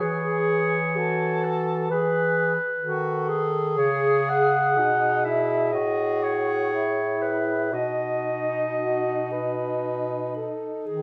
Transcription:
Already playing: G#4
0.00 E3 G#4 C#5
0.96 F#4 A4
1.44 A4
1.90 E3 G#4 B4
2.80 D#3 F#4 A4
3.29 G#4
3.77 C#3 G#4 C#5
4.29 F#5
4.77 B2 D#4 G#4
5.25 E4 E5
5.72 A2 F#4 D#5
6.23 C#5
6.74 E4
7.22 B4
7.73 B2 D#4 F#4 D#5
8.78 F#4
9.32 B4
10.36 A4
10.86 D#3 G#4

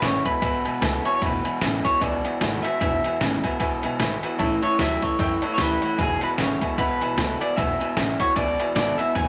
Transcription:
Already playing: E2
0.01 G#1 E2 C#3 D3 G#3 B3 E4 B4 C#5 E5 G#5, snare, ride
0.24 E2 B2 B4 E5 G#5, muted upright bass stroke, kick, ride
0.41 G#1 E2 B2 B4 E5 G#5, kick, ride
0.65 B1 E2 B2 B4 E5 G#5, ride
0.81 C#2 E2 B2 D3 G#3 B3 E4 B4 E5 G#5, snare, ride
1.04 E2 B2 E4 B4 C#5 E5 G#5, muted upright bass stroke, ride
1.15 C#5
1.21 E1 E2 B2 B4 E5 G#5, kick, ride
1.44 E2 B2 B4 E5 G#5, muted upright bass stroke, ride
1.61 A1 E2 C#3 D3 G#3 B3 E4 B4 E5 G#5, snare, ride
1.84 E2 B2 B3 E4 B4 C#5 E5 G#5, muted upright bass stroke, kick, ride
2.01 C#2 E2 B2 B4 D5 E5 G#5, kick, ride
2.24 E2 B2 B4 E5 G#5, muted upright bass stroke, ride
2.41 G#1 E2 B2 D3 G#3 B3 E4 B4 E5 G#5, snare, ride
2.63 E2 B2 B3 E4 B4 E5 G#5, muted upright bass stroke, ride
2.80 E1 E2 B2 B4 E5 G#5, kick, ride
3.04 E2 B2 B4 E5 G#5, muted upright bass stroke, ride
3.20 G#1 E2 C#3 D3 G#3 B3 E4 B4 E5 G#5, snare, ride
3.44 E2 B2 B3 E4 B4 E5 G#5, muted upright bass stroke, kick, ride
3.60 G#1 E2 B2 B4 E5 G#5, kick, ride
3.83 B1 E2 B2 B4 E5 G#5, ride
3.99 G#1 E2 B2 D3 G#3 B3 E4 B4 E5 G#5, snare, ride
4.22 E2 B2 B3 E4 B4 E5 F#5, muted upright bass stroke, ride
4.39 A1 A2 E3 C#5 E5 A5, kick, ride
4.62 A2 E3 C#5 E5 A5, muted upright bass stroke, ride
4.78 D2 A2 E3 F#3 G3 C#4 E4 C#5 E5 A5, snare, ride
5.01 A2 E3 C#4 E4 C#5 E5 A5, muted upright bass stroke, kick, ride
5.19 E2 F#2 A2 E3 C#5 E5 G5, kick, ride
5.42 A2 E3 C#5 E5 A5, muted upright bass stroke, ride
5.54 C#5
5.58 D2 A2 E3 G3 C#4 E4 B4 C#5 E5 A5, snare, ride
5.81 A2 E3 C#4 E4 C#5 E5 F#5, ride
5.98 E1 E2 B2 G#4 B4 E5 G#5, kick, ride
6.21 E2 B2 B4 E5 G#5, muted upright bass stroke, ride
6.38 G#1 E2 C#3 D3 G#3 B3 E4 B4 C#5 E5 G#5, snare, ride
6.61 E2 B2 B4 E5 G#5, muted upright bass stroke, kick, ride
6.77 G#1 E2 B2 B4 E5 F#5, kick, ride
7.01 B1 E2 B2 B4 E5 G#5, ride
7.16 C#2 E2 B2 D3 G#3 B3 E4 B4 E5 G#5, snare, ride
7.40 E2 B2 B3 E4 B4 D5 E5 G#5, muted upright bass stroke, ride
7.56 E1 E2 B2 B4 E5 G#5, kick, ride
7.80 E2 B2 B4 E5 G#5, muted upright bass stroke, ride
7.96 A1 E2 C#3 D3 G#3 B3 E4 B4 E5 G#5, snare, ride
8.20 E2 B2 B3 E4 B4 C#5 E5 F#5, kick, ride
8.36 C#2 E2 B2 B4 D5 E5 G#5, kick, ride
8.59 E2 B2 B4 E5 G#5, muted upright bass stroke, ride
8.75 G#1 E2 B2 D3 G#3 B3 E4 B4 D5 E5 G#5, snare, ride
8.98 E2 B2 B3 E4 B4 E5 G#5, muted upright bass stroke, ride
9.15 E1 E2 B2 B4 E5 G#5, kick, ride

